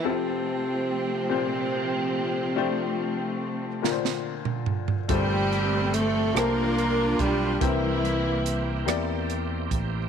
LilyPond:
<<
  \new Staff \with { instrumentName = "Upright piano" } { \time 6/8 \key f \major \tempo 4. = 48 <c c' f' a'>4. <bes, c c' f' g' c''>4. | <a d' f' g' c''>4. <bes, d d' f' bes' c''>4. | <g, bes, a f' g' a' c''>4. <a bes f' g' c'' a''>4. | <c bes c' e' g' c''>4. <bes c' e' g' d''>4. | }
  \new Staff \with { instrumentName = "String section" } { \time 6/8 \key f \major << { c'2.~ | c'2 r4 | g'4 a'8 bes'4 g'8 | e'4. r4. | } \\ { <f a>2.~ | <f a>2 r4 | <a c'>4. <d' f'>4. | <g bes>4. r4. | } >> }
  \new Staff \with { instrumentName = "Tonewheel organ" } { \time 6/8 \key f \major r2. | r2. | <f g c' g'>2. | <e bes c' g'>2. | }
  \new Staff \with { instrumentName = "Tenor saxophone" } { \clef bass \time 6/8 \key f \major c2.~ | c2 r4 | g4 a8 bes4 g8 | e4. r4. | }
  \new Staff \with { instrumentName = "Fingered electric bass" } { \clef bass \time 6/8 \key f \major r2. | r2. | g,,4. c,4 b,,8 | c,4. e,4 a,,8 | }
  \new DrumStaff \with { instrumentName = "Drums" } \drummode { \time 6/8 r4. r4. | r4. sn16 sn8 toml16 tomfh16 tomfh16 | <hh bd>8 hh8 hh8 <hh ss>8 hh8 <hh bd>8 | <hh bd>8 hh8 hh8 <hh ss>8 hh8 <hh bd>8 | }
>>